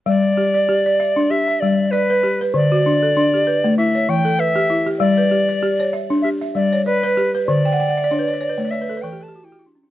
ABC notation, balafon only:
X:1
M:4/4
L:1/16
Q:"Swing 16ths" 1/4=97
K:Glyd
V:1 name="Balafon"
z2 G d2 d e2 G e3 d2 G B- | B F D A2 G B2 E c2 A B2 E G- | G B G d2 c e2 G e2 c d2 G B- | B g/2 f/2 g/2 f/2 e/2 d/2 c/2 B/2 c/2 d/2 c/2 B/2 c/2 d/2 c/2 B/2 A/2 B/2 A/2 G/2 A/2 G/2 F/2 E/2 F/2 E/2 D/2 C/2 D |]
V:2 name="Balafon"
G,2 z2 G2 z D2 z G,2 z B2 z | D,2 z2 D2 z A, z2 E,2 z G2 z | G,2 z2 G2 z D2 z G,2 z B2 z | D,2 z2 D2 z A, z2 E,2 z G2 z |]